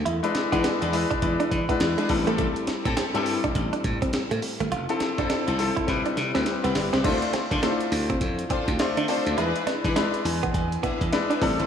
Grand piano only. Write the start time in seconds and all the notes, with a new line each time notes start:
0.23 G#3 D4 E4 B4
0.52 G#3 D4 E4 B4
0.93 G#3 D4 E4 B4
1.22 G#3 D4 E4 B4
1.69 G#3 D4 E4 B4
2.09 G3 C4 E4 A4
3.14 G3 C4 E4 A4
4.89 F3 C4 E4 A4
5.19 F3 C4 E4 A4
5.58 F3 C4 E4 A4
5.87 G3 C4 E4 B4
6.34 G3 C4 E4 B4
6.64 G4 E5
6.76 D5
6.93 E4 C5
7.04 A3 D4 F4 C5
7.62 A3 D4 E4 C5
7.70 F4
8.79 A3 D4 F4 C5
9.08 A3 D4 F4 C5
9.37 G#3 D4 E4 A#4
9.45 B4
9.96 G#3 D4 E4 B4
10.26 G#5
10.54 G#5
10.84 E5
11.12 G#3 D4 E4 B4 D5
11.41 G3 C4 E4 A4